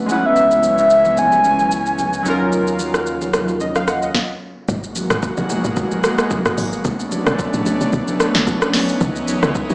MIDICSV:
0, 0, Header, 1, 7, 480
1, 0, Start_track
1, 0, Key_signature, 5, "minor"
1, 0, Tempo, 540541
1, 321, Time_signature, 4, 2, 24, 8
1, 8654, End_track
2, 0, Start_track
2, 0, Title_t, "Soft synth lead"
2, 0, Program_c, 0, 80
2, 95, Note_on_c, 0, 78, 85
2, 228, Note_on_c, 0, 76, 87
2, 242, Note_off_c, 0, 78, 0
2, 700, Note_off_c, 0, 76, 0
2, 705, Note_on_c, 0, 76, 92
2, 1052, Note_on_c, 0, 80, 104
2, 1065, Note_off_c, 0, 76, 0
2, 2006, Note_off_c, 0, 80, 0
2, 8654, End_track
3, 0, Start_track
3, 0, Title_t, "Synth keys"
3, 0, Program_c, 1, 88
3, 0, Control_c, 1, 64, 127
3, 0, Note_on_c, 1, 57, 76
3, 0, Note_on_c, 1, 61, 67
3, 0, Note_on_c, 1, 62, 70
3, 0, Note_on_c, 1, 66, 70
3, 0, Note_on_c, 1, 71, 83
3, 54, Note_on_c, 1, 56, 66
3, 70, Note_off_c, 1, 61, 0
3, 70, Note_on_c, 1, 61, 59
3, 87, Note_on_c, 1, 59, 57
3, 92, Note_off_c, 1, 71, 0
3, 92, Control_c, 1, 64, 0
3, 93, Note_off_c, 1, 66, 0
3, 94, Note_off_c, 1, 62, 0
3, 96, Note_off_c, 1, 57, 0
3, 102, Note_on_c, 1, 64, 58
3, 118, Note_on_c, 1, 71, 68
3, 271, Control_c, 1, 64, 127
3, 1952, Note_off_c, 1, 56, 0
3, 1960, Note_off_c, 1, 61, 0
3, 1968, Note_off_c, 1, 59, 0
3, 1976, Note_off_c, 1, 64, 0
3, 1977, Note_on_c, 1, 54, 77
3, 1984, Note_off_c, 1, 71, 0
3, 1992, Note_on_c, 1, 61, 69
3, 2008, Note_on_c, 1, 63, 67
3, 2012, Control_c, 1, 64, 0
3, 2024, Note_on_c, 1, 65, 66
3, 2040, Note_on_c, 1, 70, 83
3, 2167, Control_c, 1, 64, 127
3, 3205, Note_on_c, 1, 75, 66
3, 3329, Note_off_c, 1, 75, 0
3, 3339, Note_on_c, 1, 77, 72
3, 3438, Note_off_c, 1, 77, 0
3, 3445, Note_on_c, 1, 78, 67
3, 3568, Note_off_c, 1, 78, 0
3, 3579, Note_on_c, 1, 75, 64
3, 3635, Note_off_c, 1, 54, 0
3, 3643, Note_off_c, 1, 61, 0
3, 3651, Note_off_c, 1, 63, 0
3, 3659, Note_off_c, 1, 65, 0
3, 3667, Note_off_c, 1, 70, 0
3, 3691, Control_c, 1, 64, 0
3, 3804, Note_off_c, 1, 75, 0
3, 8654, End_track
4, 0, Start_track
4, 0, Title_t, "Analog synth pad"
4, 0, Program_c, 2, 89
4, 0, Note_on_c, 2, 59, 74
4, 82, Note_on_c, 2, 49, 80
4, 83, Note_on_c, 2, 52, 72
4, 83, Note_on_c, 2, 61, 84
4, 1965, Note_off_c, 2, 59, 0
4, 1983, Note_off_c, 2, 52, 0
4, 2003, Note_on_c, 2, 54, 73
4, 2004, Note_on_c, 2, 65, 84
4, 3646, Note_off_c, 2, 49, 0
4, 3646, Note_off_c, 2, 61, 0
4, 3665, Note_off_c, 2, 54, 0
4, 3665, Note_off_c, 2, 65, 0
4, 4161, Note_on_c, 2, 56, 77
4, 4162, Note_on_c, 2, 47, 81
4, 4162, Note_on_c, 2, 58, 76
4, 4162, Note_on_c, 2, 66, 93
4, 6062, Note_off_c, 2, 47, 0
4, 6062, Note_off_c, 2, 56, 0
4, 6062, Note_off_c, 2, 58, 0
4, 6062, Note_off_c, 2, 66, 0
4, 6083, Note_on_c, 2, 57, 75
4, 6083, Note_on_c, 2, 59, 77
4, 6084, Note_on_c, 2, 61, 85
4, 6084, Note_on_c, 2, 62, 93
4, 7745, Note_off_c, 2, 57, 0
4, 7745, Note_off_c, 2, 62, 0
4, 7761, Note_on_c, 2, 52, 77
4, 7761, Note_on_c, 2, 63, 95
4, 8654, Note_off_c, 2, 52, 0
4, 8654, Note_off_c, 2, 59, 0
4, 8654, Note_off_c, 2, 61, 0
4, 8654, Note_off_c, 2, 63, 0
4, 8654, End_track
5, 0, Start_track
5, 0, Title_t, "Sub bass"
5, 0, Program_c, 3, 38
5, 321, Note_on_c, 3, 37, 82
5, 1967, Note_off_c, 3, 37, 0
5, 2002, Note_on_c, 3, 39, 84
5, 3648, Note_off_c, 3, 39, 0
5, 8654, End_track
6, 0, Start_track
6, 0, Title_t, "Log drum bass"
6, 0, Program_c, 4, 39
6, 4161, Note_on_c, 4, 32, 109
6, 4521, Note_off_c, 4, 32, 0
6, 4534, Note_on_c, 4, 32, 102
6, 4766, Note_off_c, 4, 32, 0
6, 4773, Note_on_c, 4, 35, 89
6, 5005, Note_off_c, 4, 35, 0
6, 5014, Note_on_c, 4, 32, 97
6, 5350, Note_off_c, 4, 32, 0
6, 5734, Note_on_c, 4, 30, 92
6, 5838, Note_off_c, 4, 30, 0
6, 5842, Note_on_c, 4, 32, 102
6, 6074, Note_off_c, 4, 32, 0
6, 6081, Note_on_c, 4, 35, 107
6, 6441, Note_off_c, 4, 35, 0
6, 6454, Note_on_c, 4, 35, 104
6, 6686, Note_off_c, 4, 35, 0
6, 6694, Note_on_c, 4, 33, 93
6, 6926, Note_off_c, 4, 33, 0
6, 6934, Note_on_c, 4, 35, 89
6, 7038, Note_off_c, 4, 35, 0
6, 7044, Note_on_c, 4, 35, 107
6, 7403, Note_off_c, 4, 35, 0
6, 7415, Note_on_c, 4, 38, 95
6, 7518, Note_off_c, 4, 38, 0
6, 8001, Note_on_c, 4, 37, 109
6, 8361, Note_off_c, 4, 37, 0
6, 8373, Note_on_c, 4, 37, 106
6, 8605, Note_off_c, 4, 37, 0
6, 8614, Note_on_c, 4, 39, 85
6, 8654, Note_off_c, 4, 39, 0
6, 8654, End_track
7, 0, Start_track
7, 0, Title_t, "Drums"
7, 81, Note_on_c, 9, 63, 61
7, 81, Note_on_c, 9, 82, 79
7, 170, Note_off_c, 9, 63, 0
7, 170, Note_off_c, 9, 82, 0
7, 320, Note_on_c, 9, 64, 69
7, 321, Note_on_c, 9, 82, 78
7, 409, Note_off_c, 9, 64, 0
7, 410, Note_off_c, 9, 82, 0
7, 454, Note_on_c, 9, 82, 50
7, 542, Note_off_c, 9, 82, 0
7, 559, Note_on_c, 9, 63, 59
7, 561, Note_on_c, 9, 82, 85
7, 648, Note_off_c, 9, 63, 0
7, 650, Note_off_c, 9, 82, 0
7, 694, Note_on_c, 9, 82, 60
7, 783, Note_off_c, 9, 82, 0
7, 801, Note_on_c, 9, 82, 66
7, 890, Note_off_c, 9, 82, 0
7, 932, Note_on_c, 9, 82, 47
7, 933, Note_on_c, 9, 63, 71
7, 1021, Note_off_c, 9, 82, 0
7, 1022, Note_off_c, 9, 63, 0
7, 1040, Note_on_c, 9, 63, 57
7, 1040, Note_on_c, 9, 64, 77
7, 1042, Note_on_c, 9, 82, 84
7, 1128, Note_off_c, 9, 63, 0
7, 1128, Note_off_c, 9, 64, 0
7, 1131, Note_off_c, 9, 82, 0
7, 1172, Note_on_c, 9, 63, 68
7, 1173, Note_on_c, 9, 82, 48
7, 1261, Note_off_c, 9, 63, 0
7, 1262, Note_off_c, 9, 82, 0
7, 1278, Note_on_c, 9, 64, 71
7, 1281, Note_on_c, 9, 82, 65
7, 1367, Note_off_c, 9, 64, 0
7, 1370, Note_off_c, 9, 82, 0
7, 1412, Note_on_c, 9, 63, 63
7, 1413, Note_on_c, 9, 82, 49
7, 1501, Note_off_c, 9, 63, 0
7, 1501, Note_off_c, 9, 82, 0
7, 1523, Note_on_c, 9, 82, 83
7, 1611, Note_off_c, 9, 82, 0
7, 1653, Note_on_c, 9, 82, 56
7, 1742, Note_off_c, 9, 82, 0
7, 1761, Note_on_c, 9, 63, 66
7, 1761, Note_on_c, 9, 64, 66
7, 1761, Note_on_c, 9, 82, 64
7, 1850, Note_off_c, 9, 63, 0
7, 1850, Note_off_c, 9, 64, 0
7, 1850, Note_off_c, 9, 82, 0
7, 1893, Note_on_c, 9, 82, 55
7, 1982, Note_off_c, 9, 82, 0
7, 2000, Note_on_c, 9, 63, 65
7, 2002, Note_on_c, 9, 82, 80
7, 2089, Note_off_c, 9, 63, 0
7, 2091, Note_off_c, 9, 82, 0
7, 2240, Note_on_c, 9, 64, 69
7, 2241, Note_on_c, 9, 82, 79
7, 2329, Note_off_c, 9, 64, 0
7, 2330, Note_off_c, 9, 82, 0
7, 2373, Note_on_c, 9, 82, 49
7, 2462, Note_off_c, 9, 82, 0
7, 2477, Note_on_c, 9, 63, 60
7, 2480, Note_on_c, 9, 82, 92
7, 2566, Note_off_c, 9, 63, 0
7, 2569, Note_off_c, 9, 82, 0
7, 2612, Note_on_c, 9, 37, 90
7, 2613, Note_on_c, 9, 82, 60
7, 2701, Note_off_c, 9, 37, 0
7, 2702, Note_off_c, 9, 82, 0
7, 2721, Note_on_c, 9, 82, 69
7, 2810, Note_off_c, 9, 82, 0
7, 2852, Note_on_c, 9, 82, 46
7, 2854, Note_on_c, 9, 63, 72
7, 2941, Note_off_c, 9, 82, 0
7, 2943, Note_off_c, 9, 63, 0
7, 2960, Note_on_c, 9, 63, 53
7, 2960, Note_on_c, 9, 64, 80
7, 2961, Note_on_c, 9, 37, 97
7, 2962, Note_on_c, 9, 82, 89
7, 3049, Note_off_c, 9, 63, 0
7, 3049, Note_off_c, 9, 64, 0
7, 3050, Note_off_c, 9, 37, 0
7, 3051, Note_off_c, 9, 82, 0
7, 3092, Note_on_c, 9, 63, 66
7, 3093, Note_on_c, 9, 82, 48
7, 3181, Note_off_c, 9, 63, 0
7, 3182, Note_off_c, 9, 82, 0
7, 3199, Note_on_c, 9, 64, 73
7, 3200, Note_on_c, 9, 82, 65
7, 3288, Note_off_c, 9, 64, 0
7, 3289, Note_off_c, 9, 82, 0
7, 3332, Note_on_c, 9, 63, 67
7, 3333, Note_on_c, 9, 82, 53
7, 3336, Note_on_c, 9, 37, 85
7, 3421, Note_off_c, 9, 63, 0
7, 3422, Note_off_c, 9, 82, 0
7, 3425, Note_off_c, 9, 37, 0
7, 3442, Note_on_c, 9, 37, 92
7, 3442, Note_on_c, 9, 82, 88
7, 3531, Note_off_c, 9, 37, 0
7, 3531, Note_off_c, 9, 82, 0
7, 3573, Note_on_c, 9, 82, 55
7, 3661, Note_off_c, 9, 82, 0
7, 3681, Note_on_c, 9, 36, 102
7, 3681, Note_on_c, 9, 38, 82
7, 3770, Note_off_c, 9, 36, 0
7, 3770, Note_off_c, 9, 38, 0
7, 4161, Note_on_c, 9, 36, 116
7, 4161, Note_on_c, 9, 64, 71
7, 4161, Note_on_c, 9, 82, 90
7, 4249, Note_off_c, 9, 64, 0
7, 4250, Note_off_c, 9, 36, 0
7, 4250, Note_off_c, 9, 82, 0
7, 4294, Note_on_c, 9, 82, 53
7, 4382, Note_off_c, 9, 82, 0
7, 4400, Note_on_c, 9, 82, 93
7, 4401, Note_on_c, 9, 63, 67
7, 4489, Note_off_c, 9, 82, 0
7, 4490, Note_off_c, 9, 63, 0
7, 4531, Note_on_c, 9, 37, 97
7, 4532, Note_on_c, 9, 82, 64
7, 4620, Note_off_c, 9, 37, 0
7, 4621, Note_off_c, 9, 82, 0
7, 4640, Note_on_c, 9, 82, 75
7, 4642, Note_on_c, 9, 36, 98
7, 4729, Note_off_c, 9, 82, 0
7, 4731, Note_off_c, 9, 36, 0
7, 4771, Note_on_c, 9, 82, 52
7, 4774, Note_on_c, 9, 63, 82
7, 4859, Note_off_c, 9, 82, 0
7, 4863, Note_off_c, 9, 63, 0
7, 4880, Note_on_c, 9, 82, 92
7, 4881, Note_on_c, 9, 63, 61
7, 4881, Note_on_c, 9, 64, 86
7, 4969, Note_off_c, 9, 82, 0
7, 4970, Note_off_c, 9, 63, 0
7, 4970, Note_off_c, 9, 64, 0
7, 5011, Note_on_c, 9, 82, 52
7, 5012, Note_on_c, 9, 63, 75
7, 5100, Note_off_c, 9, 82, 0
7, 5101, Note_off_c, 9, 63, 0
7, 5119, Note_on_c, 9, 82, 72
7, 5120, Note_on_c, 9, 64, 78
7, 5123, Note_on_c, 9, 36, 108
7, 5208, Note_off_c, 9, 64, 0
7, 5208, Note_off_c, 9, 82, 0
7, 5212, Note_off_c, 9, 36, 0
7, 5251, Note_on_c, 9, 82, 56
7, 5254, Note_on_c, 9, 63, 74
7, 5340, Note_off_c, 9, 82, 0
7, 5343, Note_off_c, 9, 63, 0
7, 5361, Note_on_c, 9, 82, 92
7, 5362, Note_on_c, 9, 37, 100
7, 5450, Note_off_c, 9, 82, 0
7, 5451, Note_off_c, 9, 37, 0
7, 5491, Note_on_c, 9, 82, 58
7, 5492, Note_on_c, 9, 37, 94
7, 5580, Note_off_c, 9, 82, 0
7, 5581, Note_off_c, 9, 37, 0
7, 5599, Note_on_c, 9, 82, 68
7, 5601, Note_on_c, 9, 36, 98
7, 5602, Note_on_c, 9, 63, 76
7, 5602, Note_on_c, 9, 64, 74
7, 5688, Note_off_c, 9, 82, 0
7, 5690, Note_off_c, 9, 36, 0
7, 5691, Note_off_c, 9, 63, 0
7, 5691, Note_off_c, 9, 64, 0
7, 5732, Note_on_c, 9, 82, 58
7, 5733, Note_on_c, 9, 37, 88
7, 5821, Note_off_c, 9, 82, 0
7, 5822, Note_off_c, 9, 37, 0
7, 5841, Note_on_c, 9, 46, 77
7, 5841, Note_on_c, 9, 82, 93
7, 5843, Note_on_c, 9, 63, 72
7, 5929, Note_off_c, 9, 46, 0
7, 5929, Note_off_c, 9, 82, 0
7, 5931, Note_off_c, 9, 63, 0
7, 5972, Note_on_c, 9, 82, 52
7, 6061, Note_off_c, 9, 82, 0
7, 6080, Note_on_c, 9, 82, 86
7, 6081, Note_on_c, 9, 36, 122
7, 6083, Note_on_c, 9, 64, 77
7, 6169, Note_off_c, 9, 82, 0
7, 6170, Note_off_c, 9, 36, 0
7, 6171, Note_off_c, 9, 64, 0
7, 6213, Note_on_c, 9, 82, 55
7, 6302, Note_off_c, 9, 82, 0
7, 6319, Note_on_c, 9, 82, 95
7, 6322, Note_on_c, 9, 63, 68
7, 6408, Note_off_c, 9, 82, 0
7, 6411, Note_off_c, 9, 63, 0
7, 6452, Note_on_c, 9, 37, 101
7, 6453, Note_on_c, 9, 82, 65
7, 6541, Note_off_c, 9, 37, 0
7, 6542, Note_off_c, 9, 82, 0
7, 6561, Note_on_c, 9, 82, 73
7, 6562, Note_on_c, 9, 36, 97
7, 6650, Note_off_c, 9, 82, 0
7, 6651, Note_off_c, 9, 36, 0
7, 6692, Note_on_c, 9, 82, 51
7, 6696, Note_on_c, 9, 63, 78
7, 6780, Note_off_c, 9, 82, 0
7, 6785, Note_off_c, 9, 63, 0
7, 6802, Note_on_c, 9, 82, 96
7, 6804, Note_on_c, 9, 63, 62
7, 6804, Note_on_c, 9, 64, 86
7, 6891, Note_off_c, 9, 82, 0
7, 6893, Note_off_c, 9, 63, 0
7, 6893, Note_off_c, 9, 64, 0
7, 6933, Note_on_c, 9, 82, 55
7, 6935, Note_on_c, 9, 63, 74
7, 7022, Note_off_c, 9, 82, 0
7, 7024, Note_off_c, 9, 63, 0
7, 7041, Note_on_c, 9, 82, 74
7, 7042, Note_on_c, 9, 64, 84
7, 7044, Note_on_c, 9, 36, 112
7, 7129, Note_off_c, 9, 82, 0
7, 7131, Note_off_c, 9, 64, 0
7, 7132, Note_off_c, 9, 36, 0
7, 7173, Note_on_c, 9, 82, 57
7, 7175, Note_on_c, 9, 63, 73
7, 7261, Note_off_c, 9, 82, 0
7, 7263, Note_off_c, 9, 63, 0
7, 7282, Note_on_c, 9, 82, 99
7, 7283, Note_on_c, 9, 37, 100
7, 7371, Note_off_c, 9, 37, 0
7, 7371, Note_off_c, 9, 82, 0
7, 7412, Note_on_c, 9, 82, 61
7, 7413, Note_on_c, 9, 38, 73
7, 7501, Note_off_c, 9, 82, 0
7, 7502, Note_off_c, 9, 38, 0
7, 7520, Note_on_c, 9, 82, 69
7, 7522, Note_on_c, 9, 36, 94
7, 7523, Note_on_c, 9, 63, 77
7, 7523, Note_on_c, 9, 64, 76
7, 7609, Note_off_c, 9, 82, 0
7, 7611, Note_off_c, 9, 36, 0
7, 7612, Note_off_c, 9, 63, 0
7, 7612, Note_off_c, 9, 64, 0
7, 7653, Note_on_c, 9, 82, 58
7, 7654, Note_on_c, 9, 37, 92
7, 7742, Note_off_c, 9, 82, 0
7, 7743, Note_off_c, 9, 37, 0
7, 7757, Note_on_c, 9, 38, 71
7, 7761, Note_on_c, 9, 46, 78
7, 7761, Note_on_c, 9, 82, 92
7, 7762, Note_on_c, 9, 63, 71
7, 7845, Note_off_c, 9, 38, 0
7, 7850, Note_off_c, 9, 46, 0
7, 7850, Note_off_c, 9, 82, 0
7, 7851, Note_off_c, 9, 63, 0
7, 7892, Note_on_c, 9, 82, 52
7, 7981, Note_off_c, 9, 82, 0
7, 8000, Note_on_c, 9, 82, 87
7, 8001, Note_on_c, 9, 36, 114
7, 8003, Note_on_c, 9, 64, 75
7, 8089, Note_off_c, 9, 82, 0
7, 8090, Note_off_c, 9, 36, 0
7, 8092, Note_off_c, 9, 64, 0
7, 8132, Note_on_c, 9, 82, 57
7, 8221, Note_off_c, 9, 82, 0
7, 8240, Note_on_c, 9, 82, 99
7, 8242, Note_on_c, 9, 63, 69
7, 8329, Note_off_c, 9, 82, 0
7, 8331, Note_off_c, 9, 63, 0
7, 8372, Note_on_c, 9, 37, 95
7, 8373, Note_on_c, 9, 82, 67
7, 8461, Note_off_c, 9, 37, 0
7, 8461, Note_off_c, 9, 82, 0
7, 8481, Note_on_c, 9, 82, 74
7, 8483, Note_on_c, 9, 36, 100
7, 8570, Note_off_c, 9, 82, 0
7, 8571, Note_off_c, 9, 36, 0
7, 8612, Note_on_c, 9, 82, 52
7, 8614, Note_on_c, 9, 63, 84
7, 8654, Note_off_c, 9, 63, 0
7, 8654, Note_off_c, 9, 82, 0
7, 8654, End_track
0, 0, End_of_file